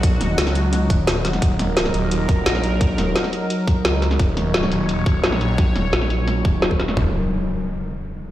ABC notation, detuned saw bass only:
X:1
M:4/4
L:1/8
Q:1/4=173
K:Ebm
V:1 name="Detuned saw bass" clef=bass
B,,, E,,, D,,3 E,,, E,,,2 | E,,,3 E,,, E,,,2 B,,,2- | B,,, E,,, z4 D,,2 | E,,,3 E,,, E,,,2 B,,,2- |
B,,, E,,, B,,,3 E,,,2 E,,, | E,,, z6 z |]